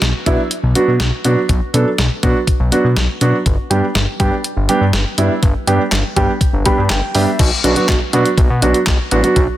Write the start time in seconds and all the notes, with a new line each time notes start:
0.02 B1, snare, closed hi-hat
0.26 B2 F#3 B3 D4 E4, kick, closed hi-hat
0.51 closed hi-hat
0.63 B1
0.75 F#3 B3 D4 F#4, closed hi-hat
0.88 B2
1.00 B1, snare, closed hi-hat
1.25 B2 F#3 B3 D4 F#4, closed hi-hat
1.49 B1, kick, closed hi-hat
1.74 B2 F#3 B3 D4 A4, closed hi-hat
1.98 B1, snare, closed hi-hat
2.23 B2 F#3 B3 D4 F#4, kick, closed hi-hat
2.47 kick, closed hi-hat
2.60 B1
2.72 F#3 B3 D4 F#4, closed hi-hat
2.84 B2
2.97 B1, snare, closed hi-hat
3.21 B2 F#3 B3 D4 F#4, closed hi-hat
3.46 G1, kick, closed hi-hat
3.70 G2 G3 B3 D4 G4, closed hi-hat
3.95 G1, snare, closed hi-hat
4.20 G2 G3 B3 D4 G4, kick, closed hi-hat
4.44 closed hi-hat
4.57 G1
4.69 G3 B3 D4 G4, closed hi-hat
4.81 G2
4.93 G1, snare, closed hi-hat
5.18 G2 G3 B3 D4 E4, closed hi-hat
5.43 G1, kick, closed hi-hat
5.67 G2 G3 B3 D4 G4, closed hi-hat
5.92 G1, snare, clap, closed hi-hat
6.16 G2 G3 B3 D4 G4, kick, closed hi-hat
6.41 kick, closed hi-hat
6.53 G1
6.66 G3 B3 D4 G4 B5, kick, closed hi-hat
6.78 G2
6.90 G1 G5, snare, clap, closed hi-hat
7.15 G2 G3 B3 D4 G4 E5, open hi-hat
7.39 B1, kick, closed hi-hat, crash
7.64 B1 F#3 B3 D4 F#4, closed hi-hat
7.76 F#3 B3 D4 F#4, closed hi-hat
7.89 B1, kick, snare, clap, closed hi-hat
8.13 B2 F#3 B3 D4 F#4, closed hi-hat
8.26 closed hi-hat
8.38 B1, kick, closed hi-hat
8.50 B2
8.62 B1 F#3 B3 D4 F#4, closed hi-hat
8.74 closed hi-hat
8.87 B1, kick, snare, clap, closed hi-hat
9.11 A1 F#3 B3 D4 F#4, closed hi-hat
9.24 F#3 B3 D4 F#4, closed hi-hat
9.36 B1, kick, closed hi-hat